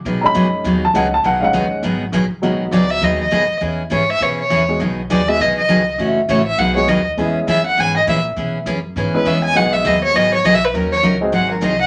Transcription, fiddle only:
X:1
M:4/4
L:1/8
Q:"Swing" 1/4=202
K:B
V:1 name="Fiddle"
z8 | z8 | z2 =d e ^d d3 | z2 c e c c3 |
z2 =d e ^d d3 | z2 c e f c d z | z2 e f g d e z | z4 z B e g |
f e d c d c (3d e B | A c z2 f A d f |]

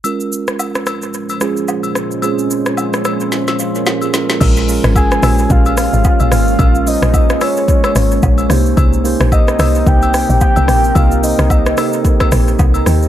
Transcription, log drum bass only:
X:1
M:4/4
L:1/16
Q:"Swing 16ths" 1/4=110
K:Bbdor
V:1 name="Log drum bass" clef=bass
z16 | z16 | B,,,3 A,,,3 B,,,2 B,,,3 A,,, z B,,, A,,,2 | B,,,3 B,,,3 z4 A,,,2 B,,,2 C,,2 |
C,,3 B,,,3 C,,2 C,,3 B,,, z C,, B,,,2 | C,,3 C,,3 z4 B,,,2 C,,2 E,,2 |]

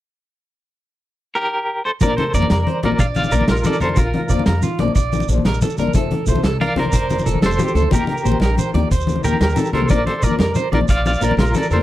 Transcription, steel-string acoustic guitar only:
X:1
M:12/8
L:1/8
Q:3/8=122
K:Bb
V:1 name="Steel-string acoustic guitar"
z12 | [F,B,DF] z [F,B,DF] z2 [F,B,F] z2 [B,DF] z2 [F,DF] | z2 [F,B,DF] z2 [F,B,DF] z2 [F,B,DF] z2 [B,DF] | [A,CF] z [A,CF] z2 [CF] z2 [CF] z2 [A,F] |
[E,B,EG] z [E,B,EG] z2 [E,B,EG] z2 [E,B,EG] z2 [E,B,EG] | [F,B,DF] z [F,B,DF] z2 [F,B,DF] z2 [F,B,DF] z2 [F,B,DF] |]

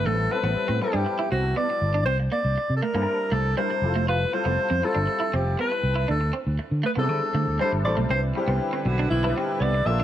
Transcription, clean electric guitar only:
X:1
M:4/4
L:1/16
Q:1/4=119
K:Clyd
V:1 name="Clean electric guitar"
A, z2 B, z C z D z E C z B, z2 D | C z _B, z3 A, B, z2 A, z G, z2 A, | =F z2 B, z C z D z E C z B, z2 E | D z C z3 A, B, z2 A, z G, z2 A, |
C z2 B, z C z D z E C z B, z2 D |]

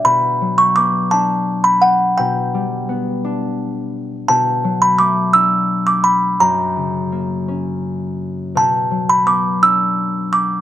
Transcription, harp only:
X:1
M:6/8
L:1/8
Q:3/8=57
K:Bm
V:1 name="Harp" clef=bass
B,, F, B, D3 | B,, G, B, D3 | B,, F, A, D3 | F,, C, ^A, C3 |
B,, F, B, D3 |]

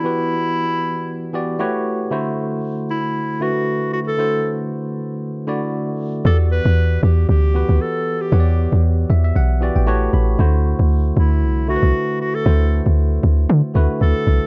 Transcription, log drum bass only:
X:1
M:4/4
L:1/16
Q:"Swing 16ths" 1/4=116
K:Dmix
V:1 name="Log drum bass" clef=bass
z16 | z16 | z16 | E,,3 E,,3 E,,2 D,,3 D,, z4 |
E,,3 E,,3 E,,2 B,,,3 A,,,3 A,,,2 | D,,3 D,,3 D,,2 C,,3 C,, z4 | D,,3 D,,3 D,,2 D, z D,, z D,, z C,, z |]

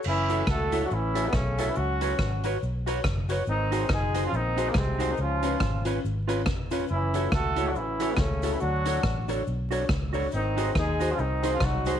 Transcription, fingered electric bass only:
X:1
M:4/4
L:1/8
Q:"Swing" 1/4=140
K:F#m
V:1 name="Fingered electric bass" clef=bass
F,,,2 C,,2 A,,,2 B,,,2 | C,,2 G,,,2 B,,,2 F,,,2 | G,,,2 F,,,2 ^A,,,2 ^B,,,2 | C,,2 G,,,2 G,,,2 ^E,,,2 |
F,,,2 C,,2 A,,,2 C,,2 | D,,2 A,,,2 B,,,2 C,,2 | G,,,2 ^D,,2 ^B,,,2 B,,,2 |]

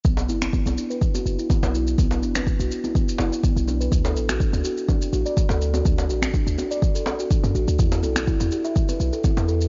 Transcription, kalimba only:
X:1
M:4/4
L:1/16
Q:"Swing 16ths" 1/4=124
K:Bm
V:1 name="Kalimba"
B, z E z B, z D B z F z E B, z E z | B, z D B z F z E B, z E z B, z D B | z A z F D z F z D z F d z A z F | D z F z D z F d z A z F D z F z |
E z A z E z G e z B z A E z A z |]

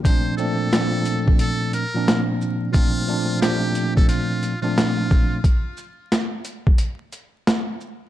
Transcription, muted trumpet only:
X:1
M:4/4
L:1/16
Q:"Swing 16ths" 1/4=89
K:Bb
V:1 name="Muted trumpet"
c2 A6 A2 B3 z3 | F4 G3 A F3 F4- F | z16 |]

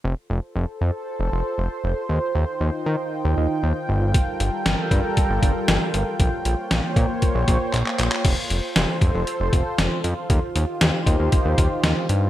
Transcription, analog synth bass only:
X:1
M:4/4
L:1/16
Q:1/4=117
K:Fmix
V:1 name="Analog synth bass" clef=bass
F,,, z F,,, z F,,, z F,, z2 F,,, F,,, z F,,, z F,,, z | E,, z E,, z E,, z E, z2 E,, E,, z E,, z G,,,2- | G,,, z G,,, z G,,, z G,, z2 G,,, G,,, z G,,, z G,,, z | B,,, z B,,, z B,,, z B,, z2 B,,, B,,, z B,,, z B,,, z |
F,,, z F,,, z F,,, z F,,, F,,, z F,,, F,,, z F,,, z F,, z | E,, z E,, z E,, z E,, E,, z E,, E,, z E,, z G,,2 |]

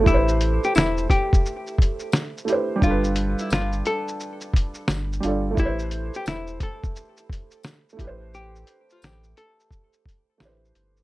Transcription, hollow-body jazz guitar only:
X:1
M:4/4
L:1/16
Q:"Swing 16ths" 1/4=87
K:Am
V:1 name="Hollow-body jazz guitar"
E3 G E2 G8- G2 | F3 E F2 A8- A2 | E3 G E2 A8- A2 | G3 F G2 A8- A2 |]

